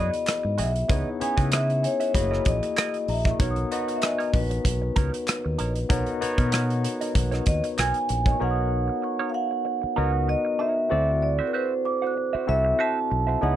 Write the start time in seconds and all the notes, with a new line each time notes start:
Already playing: B3 E4 F#4 G#4 D#5 B5
0.14 closed hi-hat
0.27 muted clean electric guitar stroke, cross-stick, clap, closed hi-hat
0.44 G#2, muted clean electric guitar stroke
0.58 B1 F#4 G#4 D#5 E5, closed hi-hat
0.75 muted clean electric guitar stroke, closed hi-hat
0.89 C#2 B3 D#4 E4 G#4 B4 C#5 D#5, kick, closed hi-hat
1.20 B3 C#4 E4 G#4 C#5 G#5, muted clean electric guitar stroke, muted fingered electric bass stroke, closed hi-hat
1.37 C#3 E4 B4 D#5, kick, closed hi-hat
1.52 E4 B4 D#5 E5, cross-stick, clap, closed hi-hat
1.70 closed hi-hat
1.83 C#5 G#5, muted clean electric guitar stroke, closed hi-hat
2.00 E4 B4 E5, closed hi-hat
2.14 F#1 A3 E4 F#4 G#4 D#5, kick, closed hi-hat
2.20 A#3
2.31 E4 A#4 D#5, cross-stick
2.45 A#1 D#5, muted clean electric guitar stroke, kick, closed hi-hat
2.63 muted clean electric guitar stroke, closed hi-hat
2.76 E4 A#4 D#5, cross-stick, clap, closed hi-hat
2.94 closed hi-hat
3.08 A#1 E5 A#5, muted clean electric guitar stroke, open hi-hat
3.25 E4 A#4 D#5, kick, cross-stick, closed hi-hat
3.31 C#6
3.39 B1 B3 D#4 F#4 A#4 C#5, kick, closed hi-hat
3.51 D#6
3.56 closed hi-hat
3.71 B3 D#4 F#4 B4 D#5 F#5, closed hi-hat
3.88 muted clean electric guitar stroke, closed hi-hat
3.96 E5
4.02 D#5 G#5, muted clean electric guitar stroke, cross-stick, clap, closed hi-hat
4.19 D#4 A#4 C#5, closed hi-hat
4.34 A#1 B4, kick, open hi-hat
4.51 muted clean electric guitar stroke, closed hi-hat
4.64 B1, muted clean electric guitar stroke, kick, closed hi-hat
4.82 muted clean electric guitar stroke
4.96 C#2 D#4 A#4 C#5, kick, closed hi-hat
5.14 muted clean electric guitar stroke, closed hi-hat
5.28 muted clean electric guitar stroke, cross-stick, clap, closed hi-hat
5.45 D#2, muted clean electric guitar stroke
5.59 A#1 D#4 A#4 C#5, closed hi-hat
5.76 muted clean electric guitar stroke, closed hi-hat
5.89 B1 B3 D#4 F#4 A#4 C#5 A#5, kick, closed hi-hat
6.06 closed hi-hat
6.21 B3 D#4 F#4 B4 C#5, muted clean electric guitar stroke, muted fingered electric bass stroke, closed hi-hat
6.37 B2 D#4 A#4 C#5, kick, closed hi-hat
6.52 D#4 A#4 C#5, cross-stick, clap, closed hi-hat
6.70 closed hi-hat
6.84 muted clean electric guitar stroke, closed hi-hat
7.01 D#4 A#4 D#5, closed hi-hat
7.15 B1, muted clean electric guitar stroke, kick, closed hi-hat
7.31 D#4 A#4 C#5, cross-stick, closed hi-hat
7.46 D#2 D#5, muted clean electric guitar stroke, kick, closed hi-hat
7.64 muted clean electric guitar stroke, closed hi-hat
7.77 B1 D#4 A#4 C#5 G#5, cross-stick, clap, closed hi-hat
7.94 closed hi-hat
8.09 A#1 G#5, muted clean electric guitar stroke, closed hi-hat
8.26 D#4 A#4 C#5, kick, closed hi-hat
8.32 C#6
8.39 B1 B3 D#4 F#4 A#4 C#5 F#5
8.51 D#6
8.88 muted clean electric guitar stroke
9.03 C#6, muted clean electric guitar stroke
9.20 D#4 A#4 C#5
9.30 F5
9.34 F#5, muted clean electric guitar stroke
9.51 muted clean electric guitar stroke
9.65 muted clean electric guitar stroke
9.82 muted clean electric guitar stroke, muted fingered electric bass stroke
9.96 C#2 B3 D#4 F#4 A#4 C#5 D#5
10.28 D#5, muted clean electric guitar stroke
10.45 muted clean electric guitar stroke
10.59 D#4 A#4 C#5 E5
10.76 muted clean electric guitar stroke
10.89 D2 C4 E4 F#4 A4 C5 D5 E5
11.22 D5, muted clean electric guitar stroke
11.39 F#4 C5 E5
11.47 B4
11.53 F#4 C5 E5
11.85 D6, muted clean electric guitar stroke
12.02 F#4 C5 F#5
12.07 F#6
12.16 muted clean electric guitar stroke
12.33 F#4 C5 E5, muted fingered electric bass stroke
12.47 C2 C4 E4 F#4 A4 E5
12.65 muted clean electric guitar stroke
12.79 F#4 C5 E5 A5
13.10 B1, muted clean electric guitar stroke
13.27 F#4 C5 E5
13.41 C#2 B3 D#4 E4 G#4 B4 C#5 D#5 F#5 D#6